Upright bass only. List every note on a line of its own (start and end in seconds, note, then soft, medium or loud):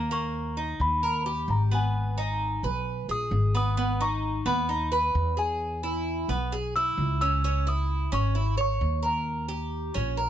0.00 0.74 D#2 loud
0.80 1.45 D#2 medium
1.48 2.57 G#1 loud
2.63 3.06 B1 medium
3.09 3.30 A#1 medium
3.31 4.40 G#1 medium
4.46 5.11 D#2 medium
5.15 6.23 E2 loud
6.28 6.94 B1 medium
6.98 8.06 C#2 medium
8.12 8.77 G#1 medium
8.81 9.89 D#2 loud
9.95 10.29 A#1 medium